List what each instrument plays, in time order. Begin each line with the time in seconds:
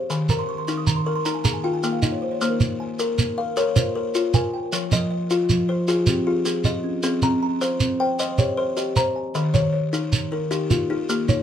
Already playing: kalimba C5
0.10 kalimba D#3 G#5, shekere
0.29 kalimba D#3 A#4 A#5, shekere
0.39 kalimba C6
0.49 kalimba C#6
0.58 kalimba C6
0.68 kalimba D#4 C#6, shekere
0.77 kalimba D#6
0.87 kalimba D#3 A#5, shekere
0.96 kalimba C6
1.06 kalimba A#4 C#6
1.16 kalimba C6
1.25 kalimba D#4 A#5, shekere
1.35 kalimba G#5
1.44 kalimba A#3 G#4 A#5, shekere
1.54 kalimba G#5
1.64 kalimba F4 G5
1.74 kalimba G#5
1.83 kalimba A#3 G5, shekere
1.93 kalimba F5
2.02 kalimba D#4 D#5, shekere
2.12 kalimba C#5
2.22 kalimba C5
2.31 kalimba C#5
2.41 kalimba A#3 C5, shekere
2.50 kalimba A#4
2.60 kalimba A#3, shekere
2.80 kalimba G#5
2.99 kalimba A#4, shekere
3.18 kalimba A#3, shekere
3.38 kalimba A#4 F5
3.57 kalimba A#4 C#5, shekere
3.76 kalimba F4 C5, shekere
3.95 kalimba A#4 C#5
4.14 kalimba F4 C#5, shekere
4.34 kalimba A#4 G#5, shekere
4.54 kalimba G5
4.72 kalimba F3 C#5, shekere
4.91 kalimba F3 D#5, shekere
5.11 kalimba D#5
5.30 kalimba F4, shekere
5.50 kalimba F3, shekere
5.69 kalimba F4 C5
5.88 kalimba F4 G#4, shekere
6.07 kalimba C4 G4, shekere
6.26 kalimba F4 G#4
6.45 kalimba C4 G#4, shekere
6.64 kalimba F4 D#5, shekere
6.84 kalimba C#4
7.03 kalimba C4 G#4, shekere
7.22 kalimba C4 A#5, shekere
7.42 kalimba A#5
7.61 kalimba C5, shekere
7.80 kalimba C4, shekere
8.00 kalimba C5 G5
8.19 kalimba C5 D#5, shekere
8.38 kalimba G4 C#5, shekere
8.57 kalimba C5 D#5
8.77 kalimba G4 D#5, shekere
8.96 kalimba C5 A#5, shekere
9.16 kalimba G#5
9.35 kalimba D#3 D#5, shekere
9.54 kalimba D#3 C#5, shekere
9.74 kalimba C#5
9.93 kalimba D#4, shekere
10.12 kalimba D#3, shekere
10.32 kalimba D#4 A#4
10.51 kalimba D#4 G4, shekere
10.70 kalimba A#3 F4, shekere
10.89 kalimba D#4 G4
11.09 kalimba A#3 G4, shekere
11.28 kalimba D#4 C#5, shekere